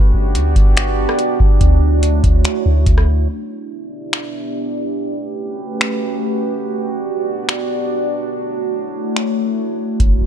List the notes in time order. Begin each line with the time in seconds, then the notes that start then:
Already playing: G1 B3 D4 F#4 G4 D5
0.14 G1
0.35 D2, closed hi-hat
0.56 G1, kick, closed hi-hat
0.77 finger snap, closed hi-hat
1.09 cross-stick
1.19 closed hi-hat
1.40 G1, kick
1.61 D2 A3 E4 F#4 C#5, kick, closed hi-hat
2.03 closed hi-hat
2.24 D2, kick, closed hi-hat
2.45 finger snap, closed hi-hat
2.66 D2
2.86 D2, kick, closed hi-hat
2.98 cross-stick
3.29 B3 D4 E4 G4 D5
4.13 finger snap
4.97 A3 C#4 F#4 B4
5.81 finger snap
6.64 B3 D4 D5
7.49 finger snap
8.32 A3 E4 C#5
9.16 finger snap
10.00 E1 B3 D4 E4 G4 D5, kick, closed hi-hat
10.21 E1